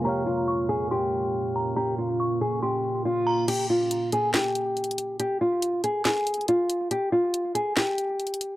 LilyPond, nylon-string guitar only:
\new Staff \with { instrumentName = "Nylon-string guitar" } { \time 4/4 \key bes \dorian \tempo 4 = 140 g'8 f'4 aes'8 g'2 | g'8 f'4 aes'8 g'4 f'4 | g'8 f'4 aes'8 g'2 | g'8 f'4 aes'8 aes'4 f'4 |
g'8 f'4 aes'8 g'2 | }